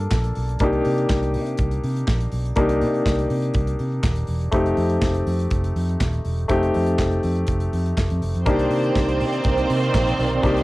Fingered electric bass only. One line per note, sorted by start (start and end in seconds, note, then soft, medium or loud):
0.12 0.31 A#1 medium
0.37 0.56 B1 medium
0.61 0.80 C2 medium
0.86 1.05 C3 medium
1.10 1.37 C2 loud
1.35 1.54 C3 loud
1.59 1.78 C2 loud
1.84 2.03 C3 loud
2.08 2.27 A#1 medium
2.33 2.52 B1 medium
2.57 2.83 C2 medium
2.82 3.01 C3 medium
3.06 3.25 C2 medium
3.30 3.50 C3 loud
3.55 3.74 C2 loud
3.80 3.99 C3 medium
4.04 4.23 D#1 medium
4.29 4.48 E1 medium
4.53 4.72 F1 medium
4.78 4.97 F2 medium
5.02 5.21 F1 medium
5.27 5.46 F2 medium
5.52 5.71 F1 loud
5.76 5.95 F2 medium
6.01 6.20 D#1 medium
6.25 6.44 E1 medium
6.50 6.69 F1 medium
6.76 6.94 F2 medium
6.99 7.18 F1 medium
7.24 7.43 F2 medium
7.48 7.67 F1 loud
7.73 7.92 F2 medium
7.98 8.08 F1 medium
8.11 8.20 F2 loud
8.22 8.32 F1 medium
8.35 8.44 F2 medium
8.47 8.66 C2 medium
8.71 8.90 C3 medium
8.96 9.22 C2 loud
9.20 9.39 C3 medium
9.45 9.64 C2 medium
9.70 9.89 C3 medium
9.94 10.13 A#1 medium
10.19 10.38 B1 medium
10.44 10.63 C2 loud